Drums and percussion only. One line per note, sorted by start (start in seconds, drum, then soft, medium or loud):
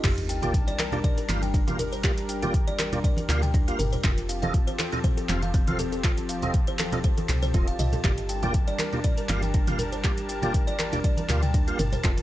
0.04 kick loud
0.04 clap loud
0.04 closed hi-hat medium
0.04 mid tom medium
0.04 crash loud
0.04 shaker medium
0.18 closed hi-hat soft
0.18 muted conga medium
0.18 shaker soft
0.29 open hi-hat loud
0.29 shaker medium
0.42 closed hi-hat soft
0.42 muted conga soft
0.42 high conga loud
0.42 low conga loud
0.42 shaker soft
0.54 kick loud
0.54 closed hi-hat medium
0.54 shaker medium
0.67 closed hi-hat soft
0.67 muted conga medium
0.79 clap medium
0.79 open hi-hat medium
0.79 high conga medium
0.79 shaker loud
0.92 muted conga soft
0.92 low conga loud
0.92 shaker soft
1.04 kick loud
1.04 closed hi-hat medium
1.04 mid tom medium
1.04 shaker medium
1.18 closed hi-hat soft
1.18 shaker soft
1.29 clap medium
1.29 open hi-hat loud
1.29 muted conga medium
1.29 high conga loud
1.29 shaker medium
1.42 closed hi-hat soft
1.42 high conga medium
1.42 shaker soft
1.54 kick loud
1.54 closed hi-hat medium
1.54 muted conga soft
1.54 shaker medium
1.68 closed hi-hat soft
1.68 mid tom medium
1.68 high conga loud
1.68 shaker soft
1.79 open hi-hat medium
1.79 muted conga medium
1.79 low conga medium
1.79 shaker medium
1.93 closed hi-hat soft
1.93 shaker soft
2.04 kick loud
2.04 clap loud
2.04 closed hi-hat medium
2.04 shaker medium
2.18 closed hi-hat soft
2.18 muted conga soft
2.18 shaker soft
2.29 open hi-hat medium
2.29 shaker medium
2.42 closed hi-hat soft
2.42 muted conga soft
2.42 high conga loud
2.42 low conga loud
2.42 shaker soft
2.54 kick loud
2.54 closed hi-hat medium
2.54 shaker medium
2.68 closed hi-hat soft
2.68 muted conga medium
2.79 clap loud
2.79 open hi-hat medium
2.79 high conga medium
2.79 shaker loud
2.92 closed hi-hat soft
2.92 muted conga soft
2.92 low conga loud
2.92 shaker soft
3.04 kick loud
3.04 closed hi-hat medium
3.04 shaker medium
3.17 closed hi-hat soft
3.17 high conga medium
3.17 shaker soft
3.29 clap medium
3.29 open hi-hat medium
3.29 muted conga soft
3.29 low conga medium
3.29 shaker loud
3.43 closed hi-hat soft
3.43 mid tom medium
3.43 shaker soft
3.54 kick loud
3.54 closed hi-hat medium
3.54 muted conga soft
3.54 shaker medium
3.68 closed hi-hat soft
3.68 shaker soft
3.79 open hi-hat medium
3.79 mid tom medium
3.79 muted conga medium
3.79 high conga medium
3.79 shaker loud
3.93 closed hi-hat soft
3.93 low conga medium
3.93 shaker soft
4.04 kick loud
4.04 clap loud
4.04 closed hi-hat medium
4.04 mid tom medium
4.04 shaker medium
4.18 closed hi-hat soft
4.18 muted conga soft
4.18 shaker soft
4.29 open hi-hat medium
4.29 shaker loud
4.43 closed hi-hat soft
4.43 muted conga soft
4.43 high conga loud
4.43 low conga loud
4.43 shaker soft
4.54 kick loud
4.54 closed hi-hat medium
4.54 shaker medium
4.68 closed hi-hat soft
4.68 muted conga soft
4.79 clap loud
4.79 open hi-hat medium
4.79 high conga medium
4.79 shaker loud
4.92 muted conga soft
4.92 low conga medium
4.92 shaker soft
5.04 kick loud
5.04 closed hi-hat medium
5.04 mid tom medium
5.04 shaker medium
5.18 closed hi-hat soft
5.18 shaker soft
5.29 clap medium
5.29 open hi-hat medium
5.29 muted conga medium
5.29 high conga loud
5.29 shaker loud
5.42 closed hi-hat soft
5.42 high conga loud
5.42 shaker soft
5.54 kick loud
5.54 closed hi-hat medium
5.54 shaker medium
5.67 closed hi-hat soft
5.67 mid tom medium
5.67 high conga loud
5.67 shaker soft
5.79 open hi-hat medium
5.79 muted conga medium
5.79 low conga medium
5.79 shaker loud
5.93 closed hi-hat soft
5.93 shaker soft
6.04 kick loud
6.04 clap medium
6.04 closed hi-hat medium
6.04 shaker medium
6.17 closed hi-hat soft
6.17 muted conga medium
6.17 shaker soft
6.29 open hi-hat medium
6.29 shaker loud
6.42 closed hi-hat soft
6.42 muted conga soft
6.42 high conga loud
6.42 low conga loud
6.42 shaker soft
6.54 kick loud
6.54 closed hi-hat medium
6.54 shaker medium
6.67 closed hi-hat soft
6.67 muted conga soft
6.79 clap loud
6.79 open hi-hat medium
6.79 high conga medium
6.79 shaker loud
6.92 closed hi-hat soft
6.92 muted conga soft
6.92 low conga loud
6.92 shaker soft
7.04 kick loud
7.04 closed hi-hat medium
7.04 shaker medium
7.18 closed hi-hat soft
7.18 high conga loud
7.18 shaker soft
7.29 clap medium
7.29 open hi-hat medium
7.29 muted conga soft
7.29 low conga loud
7.29 shaker loud
7.42 closed hi-hat soft
7.42 mid tom medium
7.42 shaker soft
7.54 kick loud
7.54 closed hi-hat medium
7.54 shaker medium
7.68 closed hi-hat soft
7.68 shaker soft
7.79 open hi-hat medium
7.79 mid tom loud
7.79 muted conga soft
7.79 high conga medium
7.79 shaker loud
7.93 closed hi-hat soft
7.93 low conga medium
7.93 shaker soft
8.04 kick loud
8.04 clap medium
8.04 closed hi-hat medium
8.04 mid tom medium
8.04 shaker medium
8.17 closed hi-hat soft
8.17 muted conga soft
8.17 shaker soft
8.29 open hi-hat medium
8.29 shaker medium
8.43 closed hi-hat soft
8.43 muted conga soft
8.43 high conga loud
8.43 low conga loud
8.43 shaker soft
8.54 kick loud
8.54 closed hi-hat medium
8.54 shaker medium
8.68 closed hi-hat soft
8.68 muted conga medium
8.79 clap medium
8.79 open hi-hat medium
8.79 high conga medium
8.79 shaker loud
8.92 muted conga soft
8.92 low conga medium
8.92 shaker soft
9.04 kick loud
9.04 closed hi-hat medium
9.04 mid tom medium
9.04 shaker medium
9.18 closed hi-hat soft
9.18 shaker soft
9.29 clap medium
9.29 open hi-hat medium
9.29 muted conga medium
9.29 high conga loud
9.29 shaker medium
9.42 closed hi-hat soft
9.42 high conga medium
9.42 shaker soft
9.54 kick loud
9.54 closed hi-hat medium
9.54 shaker medium
9.67 closed hi-hat soft
9.67 mid tom medium
9.67 high conga loud
9.67 shaker soft
9.78 open hi-hat medium
9.78 muted conga medium
9.78 low conga medium
9.78 shaker medium
9.92 closed hi-hat soft
9.92 shaker soft
10.04 kick loud
10.04 clap medium
10.04 closed hi-hat medium
10.04 shaker medium
10.18 closed hi-hat soft
10.18 muted conga soft
10.18 shaker soft
10.29 open hi-hat medium
10.29 shaker medium
10.42 closed hi-hat soft
10.42 muted conga soft
10.42 high conga loud
10.42 low conga medium
10.42 shaker soft
10.54 kick loud
10.54 closed hi-hat medium
10.54 shaker medium
10.68 closed hi-hat soft
10.68 muted conga medium
10.79 clap medium
10.79 open hi-hat medium
10.79 high conga medium
10.79 shaker medium
10.92 closed hi-hat soft
10.92 muted conga soft
10.92 low conga medium
10.92 shaker soft
11.04 kick loud
11.04 closed hi-hat medium
11.04 shaker medium
11.17 closed hi-hat soft
11.17 high conga medium
11.17 shaker soft
11.28 clap medium
11.28 open hi-hat medium
11.28 muted conga soft
11.28 low conga loud
11.28 shaker medium
11.43 closed hi-hat soft
11.43 mid tom medium
11.43 shaker soft
11.53 kick loud
11.53 closed hi-hat medium
11.53 muted conga soft
11.53 shaker soft
11.68 closed hi-hat soft
11.68 shaker soft
11.79 open hi-hat medium
11.79 mid tom loud
11.79 muted conga medium
11.79 high conga medium
11.79 shaker medium
11.92 closed hi-hat soft
11.92 low conga medium
11.92 shaker soft
12.04 kick loud
12.04 clap medium
12.04 closed hi-hat medium
12.04 mid tom medium
12.04 shaker medium
12.17 closed hi-hat soft
12.17 muted conga medium
12.17 shaker soft